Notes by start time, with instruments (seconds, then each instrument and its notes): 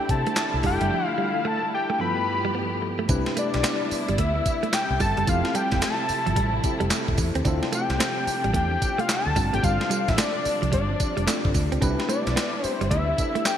Already playing: string section D3 A3 C4 E4, tine electric piano D4 E4 G4 A4, analog synth lead G5
0.09 fingered electric bass C3, analog synth lead A5, kick, closed hi-hat
0.27 clean electric guitar A3, closed hi-hat
0.36 muted clean electric guitar stroke, snare, clap, closed hi-hat
0.54 fingered electric bass C2
0.63 fingered electric bass F1, clean electric guitar G3, string section G3, tine electric piano D4 E4 G4 A4, analog synth lead G5, kick, open hi-hat
0.81 fingered electric bass F#1, clean electric guitar G3, closed hi-hat
0.91 clean electric guitar F3
1.05 analog synth lead F5, muted clean electric guitar stroke
1.18 clean electric guitar G3, analog synth lead F5
1.45 clean electric guitar A3, analog synth lead A5
1.63 muted clean electric guitar stroke
1.74 analog synth lead G5
1.90 clean electric guitar A3
1.99 tine electric piano G2 B3 E4 F4 A4, string section G2 F3 B3 G4, clean electric guitar F3, analog synth lead B5
2.17 muted clean electric guitar stroke
2.45 clean electric guitar G3
2.55 clean electric guitar B3
2.82 muted clean electric guitar stroke
2.99 clean electric guitar A3
3.09 fingered electric bass C2, string section C3 G3 B3 E4, clean electric guitar C4, tine electric piano D4 E4 G4 B4, kick, closed hi-hat, tambourine
3.26 muted clean electric guitar stroke, snare
3.37 clean electric guitar A3, analog synth lead D5, closed hi-hat, tambourine
3.54 fingered electric bass B1, snare, closed hi-hat
3.63 clean electric guitar B3, snare, clap, closed hi-hat, tambourine
3.81 muted clean electric guitar stroke
3.91 muted fingered electric bass stroke, open hi-hat, tambourine
4.09 fingered electric bass G1, clean electric guitar G3, closed hi-hat
4.18 fingered electric bass D2, clean electric guitar A3, analog synth lead E5, kick, closed hi-hat
4.35 muted clean electric guitar stroke
4.46 kick, closed hi-hat, tambourine
4.63 clean electric guitar A3, closed hi-hat
4.73 analog synth lead G5, muted clean electric guitar stroke, snare, clap, closed hi-hat, tambourine
4.90 fingered electric bass C2
5.00 fingered electric bass G1, clean electric guitar G3, analog synth lead A5, kick, open hi-hat, tambourine
5.17 fingered electric bass F#1, clean electric guitar G3, closed hi-hat
5.27 fingered electric bass F1, clean electric guitar F3, string section F3 A3 E4, tine electric piano C4 E4 G4 A4, analog synth lead F5, kick, closed hi-hat, tambourine
5.45 muted clean electric guitar stroke, snare
5.55 clean electric guitar G3, analog synth lead G5, closed hi-hat, tambourine
5.72 fingered electric bass F1, kick, snare, closed hi-hat
5.82 clean electric guitar A3, analog synth lead A5, snare, clap, closed hi-hat, tambourine
5.99 muted clean electric guitar stroke
6.09 muted fingered electric bass stroke, open hi-hat, tambourine
6.26 fingered electric bass G1, clean electric guitar F3, closed hi-hat
6.36 fingered electric bass A1, clean electric guitar G3, kick, closed hi-hat
6.54 muted clean electric guitar stroke
6.63 tine electric piano C4 E4 G4 A4, kick, closed hi-hat, tambourine
6.80 fingered electric bass F1, clean electric guitar G3, closed hi-hat
6.90 clean electric guitar A3, snare, clap, closed hi-hat, tambourine
7.08 fingered electric bass E1, kick
7.18 fingered electric bass E2, muted clean electric guitar stroke, kick, open hi-hat, tambourine
7.35 fingered electric bass D#2, clean electric guitar C4, closed hi-hat
7.45 fingered electric bass D2, string section F3 D4, tine electric piano C4 E4 F4 A4, clean electric guitar D4, kick, closed hi-hat, tambourine
7.63 muted clean electric guitar stroke, snare
7.72 clean electric guitar A3, analog synth lead G5, closed hi-hat, tambourine
7.90 fingered electric bass C2, snare, closed hi-hat
8.00 clean electric guitar C4, snare, clap, closed hi-hat, tambourine
8.17 muted clean electric guitar stroke
8.27 muted fingered electric bass stroke, open hi-hat, tambourine
8.44 fingered electric bass A1, clean electric guitar G3, closed hi-hat
8.54 fingered electric bass E2, clean electric guitar A3, analog synth lead G5, kick, closed hi-hat
8.71 muted clean electric guitar stroke
8.82 kick, closed hi-hat, tambourine
8.98 clean electric guitar A3, analog synth lead F5, closed hi-hat
9.08 analog synth lead A5, muted clean electric guitar stroke, snare, clap, closed hi-hat, tambourine
9.26 fingered electric bass D2
9.36 fingered electric bass G1, string section F3 G3 D4, clean electric guitar G3, tine electric piano C4 D4 F4 A4, kick, open hi-hat, tambourine
9.53 fingered electric bass G#1, clean electric guitar A3, analog synth lead G5, closed hi-hat
9.63 fingered electric bass G1, clean electric guitar G3, analog synth lead F5, kick, closed hi-hat, tambourine
9.81 muted clean electric guitar stroke, snare
9.90 clean electric guitar G3, closed hi-hat, tambourine
10.08 fingered electric bass A1, analog synth lead E5, kick, snare, closed hi-hat
10.18 clean electric guitar A3, analog synth lead D5, snare, clap, closed hi-hat, tambourine
10.35 muted clean electric guitar stroke
10.45 muted fingered electric bass stroke, open hi-hat, tambourine
10.62 fingered electric bass C2, clean electric guitar F3, closed hi-hat
10.72 fingered electric bass G1, clean electric guitar G3, analog synth lead D5, kick, closed hi-hat
10.89 muted clean electric guitar stroke
11.00 kick, closed hi-hat, tambourine
11.17 fingered electric bass F1, clean electric guitar G3, closed hi-hat
11.27 clean electric guitar A3, tine electric piano C4 D4 F4 A4, snare, clap, closed hi-hat, tambourine
11.45 fingered electric bass G1, kick
11.54 fingered electric bass D2, muted clean electric guitar stroke, kick, open hi-hat, tambourine
11.72 fingered electric bass C#2, clean electric guitar C4, closed hi-hat
11.81 fingered electric bass C2, string section B3 E4, clean electric guitar C4, tine electric piano D4 E4 G4 B4, kick, closed hi-hat, tambourine
11.99 muted clean electric guitar stroke, snare
12.09 clean electric guitar A3, analog synth lead D5, closed hi-hat, tambourine
12.27 fingered electric bass B1, snare, closed hi-hat
12.36 clean electric guitar B3, snare, clap, closed hi-hat, tambourine
12.54 muted clean electric guitar stroke
12.64 analog synth lead C5, muted fingered electric bass stroke, open hi-hat, tambourine
12.81 fingered electric bass G1, clean electric guitar G3, closed hi-hat
12.90 fingered electric bass D2, clean electric guitar A3, analog synth lead E5, kick, closed hi-hat
13.08 muted clean electric guitar stroke
13.18 tine electric piano D4 E4 G4 A4, kick, closed hi-hat, tambourine
13.35 clean electric guitar A3, closed hi-hat
13.45 analog synth lead G5, muted clean electric guitar stroke, snare, clap, closed hi-hat, tambourine